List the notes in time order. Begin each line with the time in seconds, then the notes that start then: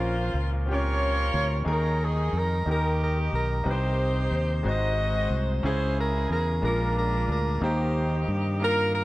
Already playing: A#1 A#2 C#4 F4 A#4 C5
0.34 C#2
0.66 C4 F4 G4
0.71 C#4 F4 A#4 C#5
1.34 D2
1.65 D#2 D#3 D#4 G#4 A#4
1.71 D#4 A#4
2.03 G#4
2.33 F2 A#4
2.66 D#2 D#3 D#4 G4 A#4
3.02 A#4
3.33 B1 A#4
3.64 C2 C3 D#4 G4 B4
3.69 D#4 G4 C5
4.31 D#2
4.63 G#1 G#2 G#3 C4 D#4 F#4 C5 D#5
4.68 F#4 C5
5.30 C2
5.63 C#2 C#3 C#4 E4 G#4 C5
5.99 A#4
6.30 E2 A#4
6.62 A#1 A#2 G#3 A#3 D4 F4 A#4
6.96 A#4
7.28 D2 A#4
7.61 D#2 D#3 A#3 D#4 G4 C5
8.28 G2
8.60 A#3 D#4 F4 A#4
8.93 A#4